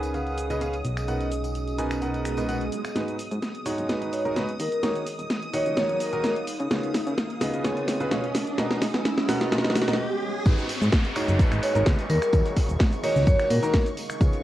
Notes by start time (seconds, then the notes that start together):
Already playing: C#2 C#3 C#4 G#4 B4 D#5 G#5 D#6
0.03 closed hi-hat, tambourine, cabasa
0.14 C#3 C#4 G#4 B4 F5, closed hi-hat, tambourine, cabasa
0.27 closed hi-hat, tambourine
0.38 closed hi-hat, cabasa
0.50 C#3 C#4 G#4 B4 D#5, closed hi-hat, tambourine, cabasa
0.61 C#4 G#4 B4 F5, closed hi-hat, tambourine, cabasa
0.73 closed hi-hat, tambourine
0.85 B1 B3, closed hi-hat, cabasa
0.97 finger snap, closed hi-hat, tambourine, cabasa
1.07 B2 D#4 F#4 A#4 B4 F#5, closed hi-hat, tambourine, cabasa
1.21 closed hi-hat, tambourine
1.32 closed hi-hat, cabasa
1.44 closed hi-hat, tambourine, cabasa
1.55 closed hi-hat, tambourine, cabasa
1.68 closed hi-hat, tambourine
1.75 B2 D#4 A#4 B4 C#5 G#5, closed hi-hat, cabasa
1.91 finger snap, closed hi-hat, tambourine, cabasa
2.01 B2 D#4 A#4 B4 F#5, closed hi-hat, tambourine, swell, cabasa
2.14 closed hi-hat, tambourine
2.25 finger snap, closed hi-hat, cabasa
2.37 B2 D#4 A#4 B4 D#5, closed hi-hat, tambourine, cabasa
2.49 B2 D#4 A#4 B4 F#5, closed hi-hat, tambourine, cabasa
2.61 closed hi-hat, tambourine
2.72 closed hi-hat, cabasa
2.85 finger snap, closed hi-hat, tambourine, cabasa
2.96 G#1 G#2 G#3 D#4 F#4 G#4 B4 D#6, snare, closed hi-hat, riser, cabasa
3.08 closed hi-hat, cabasa
3.19 open hi-hat, cabasa
3.31 G#2 D#5 A#5, closed hi-hat, cabasa
3.42 snare, closed hi-hat, cabasa
3.55 closed hi-hat
3.66 G#2 G#3 D#4 F#4 C#5, open hi-hat, cabasa
3.78 F#1, closed hi-hat, cabasa
3.89 G#2 G#3 D#4 F#4 B4, snare, closed hi-hat, cabasa
4.02 G#1, closed hi-hat
4.13 C#5, open hi-hat, cabasa
4.25 G#1 G#2 G#3 D#4 F#4 A#4, closed hi-hat, cabasa
4.36 C#2 G#3 D#4 F#4 B4, snare, closed hi-hat, cabasa
4.49 closed hi-hat
4.60 D#2 D#4 A#4, open hi-hat, cabasa
4.72 A#4, closed hi-hat, cabasa
4.83 D#2 D#3 A#3 D#4 F#4 C#5, snare, closed hi-hat, cabasa
4.96 closed hi-hat, cabasa
5.03 A#4
5.07 F5, open hi-hat, cabasa
5.19 D#1, closed hi-hat, cabasa
5.30 snare, closed hi-hat, cabasa
5.42 closed hi-hat
5.53 D#3 A#3 D#4 F#4 C#5 D#5, open hi-hat, cabasa
5.66 C#2, closed hi-hat, cabasa
5.77 D#3 A#3 D#4 F#4 C#5, snare, closed hi-hat, cabasa
5.89 D#1, closed hi-hat
6.00 A#4, open hi-hat, cabasa
6.13 D#1 D#3 A#3 D#4 F#4 A#4, closed hi-hat, cabasa
6.24 A#3 D#4 F#4 C#5, snare, closed hi-hat, cabasa
6.36 closed hi-hat
6.47 C#4, open hi-hat, cabasa
6.55 G#4
6.60 C#3 D#5, closed hi-hat, cabasa
6.71 C#2 C#3 B3 F4 G#4 C#5, snare, closed hi-hat, cabasa
6.83 closed hi-hat, cabasa
6.94 snare, open hi-hat, cabasa
7.07 C#3, closed hi-hat, cabasa
7.18 snare, closed hi-hat, cabasa
7.30 closed hi-hat
7.41 C#3 B3 F4 G#4 D#5, snare, open hi-hat, cabasa
7.53 B1, closed hi-hat, cabasa
7.64 C#3 B3 F4 G#4 C#5, snare, closed hi-hat, cabasa
7.77 C#2, closed hi-hat
7.88 snare, open hi-hat, cabasa
8.00 C#2 C#3 B3 F4 G#4 B4, closed hi-hat, cabasa
8.11 F2 B2 B3 F4 G#4 C#5, snare, closed hi-hat, cabasa
8.24 closed hi-hat
8.35 B1 B3, snare, open hi-hat, cabasa
8.47 closed hi-hat, cabasa
8.58 B1 B2 B3 F#4 A#4 D#5, snare, closed hi-hat, cabasa
8.71 snare, closed hi-hat, cabasa
8.82 snare, open hi-hat, cabasa
8.94 B2, snare, closed hi-hat, cabasa
9.05 snare, closed hi-hat, cabasa
9.17 snare, closed hi-hat
9.28 B2 B3 F#4 A#4 F#5, snare, open hi-hat, cabasa
9.41 F#1, snare, closed hi-hat, cabasa
9.52 B2 B3 F#4 A#4 D#5, snare, closed hi-hat, swell, cabasa
9.58 snare
9.64 B2, snare, closed hi-hat
9.70 snare
9.75 snare, open hi-hat, cabasa
9.81 snare
9.88 B2 B3 F#4 A#4 D#5, snare, closed hi-hat, cabasa
9.93 snare
10.45 G#1 G#2 G#3 D#4 F#4 G#4 B4 C#6, kick, closed hi-hat, tambourine, downlifter, cabasa
10.58 closed hi-hat, tambourine, cabasa
10.69 snare, open hi-hat, tambourine
10.76 D#5
10.81 G#2, tambourine, cabasa
10.92 kick, snare, closed hi-hat, tambourine, cabasa
11.04 closed hi-hat, tambourine, cabasa
11.10 A#5
11.16 G#2 G#3 D#4 F#4 C#5, finger snap, open hi-hat, tambourine
11.28 F#1, closed hi-hat, tambourine, cabasa
11.39 G#2 G#3 D#4 F#4 B4, kick, closed hi-hat, tambourine, cabasa
11.52 G#1, finger snap, closed hi-hat, tambourine, cabasa
11.63 C#5, open hi-hat, tambourine
11.75 G#1 G#2 G#3 D#4 F#4 A#4, closed hi-hat, tambourine, cabasa
11.86 C#2 G#3 D#4 F#4 B4, kick, snare, closed hi-hat, tambourine, cabasa
11.99 snare, closed hi-hat, tambourine, cabasa
12.10 D#2 D#4 A#4, open hi-hat, tambourine
12.22 A#4, finger snap, closed hi-hat, tambourine, cabasa
12.33 D#2 D#3 A#3 D#4 F#4 C#5, kick, closed hi-hat, tambourine, cabasa
12.39 A#4
12.46 closed hi-hat, tambourine, cabasa
12.56 kick, snare, open hi-hat, tambourine
12.69 D#1, closed hi-hat, tambourine, cabasa
12.79 kick, snare, closed hi-hat, tambourine, cabasa
12.93 F5, closed hi-hat, tambourine, cabasa
13.03 D#3 A#3 D#4 F#4 C#5 D#5, open hi-hat, tambourine
13.16 C#2, closed hi-hat, tambourine, cabasa
13.27 F#2 D#3 A#3 D#4 F#4 C#5, kick, closed hi-hat, tambourine, cabasa
13.39 finger snap, snare, closed hi-hat, tambourine, cabasa
13.50 A#2 A#4, open hi-hat, tambourine
13.62 D#3 A#3 D#4 F#4 A#4, snare, closed hi-hat, tambourine, cabasa
13.74 A#3 D#4 F#4 C#5, kick, snare, closed hi-hat, tambourine, cabasa
13.86 closed hi-hat, tambourine, cabasa
13.97 open hi-hat, tambourine
14.10 finger snap, closed hi-hat, tambourine, cabasa
14.21 C#2 C#3 B3 F4 G#4 C#5, kick, closed hi-hat, tambourine, cabasa
14.33 closed hi-hat, tambourine, cabasa